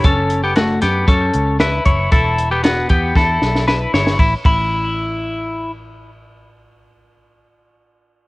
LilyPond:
<<
  \new Staff \with { instrumentName = "Clean electric guitar" } { \time 4/4 \key a \mixolydian \tempo 4 = 116 <cis' a'>8. <b g'>16 <a fis'>8 <b g'>8 <cis' a'>4 <e' b'>8 <e' cis''>8 | <e' a'>8. <b g'>16 <b fis'>8 <b g'>8 <e' a'>4 <e' b'>8 <e' cis''>8 | e'8 e'2~ e'8 r4 | r1 | }
  \new Staff \with { instrumentName = "Picked electric bass" } { \clef bass \time 4/4 \key a \mixolydian fis,,4. fis,8 fis,8 cis,4 fis,,8 | e,,4. e,8 e,8 b,,4 g,,8 | a,,8 a,,2.~ a,,8~ | a,,1 | }
  \new DrumStaff \with { instrumentName = "Drums" } \drummode { \time 4/4 <hh bd>8 hh8 <hh sn>8 <hh sn>8 <hh bd>8 hh8 <hh sn>8 <hh bd>8 | <hh bd>8 hh8 <hh sn>8 <hh bd>8 <bd sn>8 sn16 sn16 sn8 sn16 sn16 | <bd cymr>8 <bd cymr>8 r4 r4 r4 | r4 r4 r4 r4 | }
>>